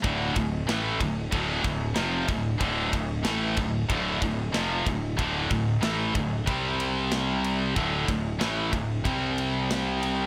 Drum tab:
RD |xxxxxxxx|xxxxxxxx|xxxxxxxx|xxxxxxxx|
SD |--o---o-|--o---o-|--o---o-|--o---o-|
BD |oo-ooo-o|oo-ooo-o|oo-oo---|oo-oo---|